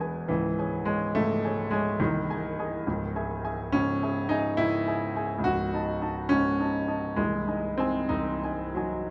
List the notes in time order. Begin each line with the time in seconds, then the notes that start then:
Already playing: E1 E2 F#3
0.00 G#4 B4 G#5
0.28 C#1 C#2 E3
0.58 G#4 C#5 G#5
0.85 G#3 G#4 C#5 G#5
1.15 C#1 C#2 A3
1.44 G#4 C#5 G#5
1.71 G#3 G#4 C#5 G#5
2.00 C1 C2 D#3
2.30 G#4 D#5 G#5
2.59 G#4 D#5 G#5
2.87 C#1 C#2
3.15 G#4 E5 G#5
3.44 G#4 E5 G#5
3.72 C#1 C#2 C#4
4.02 G#4 E5 G#5
4.29 D#4 G#4 E5 G#5
4.57 C#1 C#2 E4
4.87 G#4 E5 G#5
5.16 G#4 E5 G#5
5.39 C#2
5.44 C#1 F#4
5.73 D#4 D#5 A5
6.02 D#4 D#5 A5
6.29 C#1 C#2 C#4
6.59 D#4 D#5 A5
6.88 D#4 D#5 A5
7.16 C1 C2 G#3
7.47 D#4 D#5 G#5
7.78 C4 D#4 D#5 G#5
8.09 C1 C2 D#4
8.44 D#4 D#5 G#5
8.75 F#3 D#4 D#5 G#5